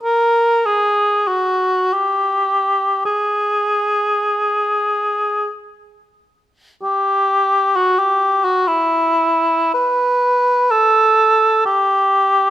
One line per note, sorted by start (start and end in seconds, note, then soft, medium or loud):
0.03 0.68 A#4 medium
0.66 1.29 G#4 soft
1.28 1.95 F#4 soft
1.93 3.05 G4 soft
3.05 5.49 G#4 soft
6.83 7.77 G4 medium
7.76 8.00 F#4 medium
7.99 8.46 G4 soft
8.45 8.69 F#4 soft
8.67 9.73 E4 medium
9.74 10.72 B4 medium
10.71 11.65 A4 medium
11.66 12.50 G4 medium